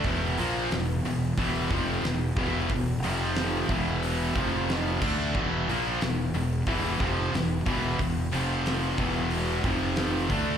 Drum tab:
CC |--------|-------x|--------|--------|
HH |oooooooo|ooooooo-|-ooooooo|oooooooo|
SD |--o---o-|--o---o-|--o---o-|--o---o-|
BD |o---oo-o|o--o-o-o|o---oo-o|o--o-o-o|